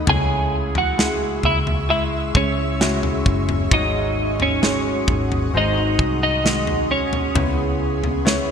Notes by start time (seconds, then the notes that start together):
Already playing: D#5
0.07 C#2 C#3 G#3 C#4 E4 G#4 C#5 E5 G#5 C#6 E6, floor tom
0.75 C#4 E4 F#4 F#5, floor tom
0.97 C#3 G#3 C#4 E4 G#4, snare
1.22 C#4 E4 G#4
1.43 C#2 G#3 C#4 E4 G#4 E5, floor tom
1.67 floor tom
1.89 G#3 E4 G#4 E5
2.13 C#4 E4 G#4
2.35 C#2 G#3 C#4 E4 G#4 C#5, kick
2.58 C#4 E4 G#4
2.80 C#3 G#3 C#4 E4 F#4 G#4, snare
3.03 floor tom
3.26 F#1 G#3 C#4 E4 G#4, kick
3.49 floor tom
3.71 G#1 G#2 C#3 F#3 G#3 C#4 D#4 F#4 G#4 C#5 D#5 F#5 D#6, kick, floor tom
4.39 F#3 C#4 D#4 G#4 C#5, floor tom
4.62 G#2 C#3 F#3 G#3 C#4 D#4 F#4 G#4 C#5, snare
4.85 F#3 C#4 D#4 G#4
5.07 G#1 F#3 C#4 D#4 G#4, kick, floor tom
5.32 floor tom
5.52 G#1 G#2 D#3 F#3 G#3 C4 D#4 F#4 G#4 C5 C6
5.57 D#4 D#5
5.75 F#3 C4 D#4 G#4
5.99 C2 F#3 C4 D#4 G#4, kick
6.21 F#3 D#4 G#4 D#5
6.44 G#2 D#3 F#3 G#3 C4 D#4 F#4 G#4 D#5, snare
6.67 floor tom
6.89 F#3 C#4 D#4 G#4 C#5
7.13 floor tom
7.34 C#2 C#3 G#3 B3 E4 G#4 C#5 E5 B5 C#6, floor tom
8.03 B3 E4 G#4, floor tom
8.25 C#3 G#3 B3 E4 G#4 C#5, snare
8.48 G#4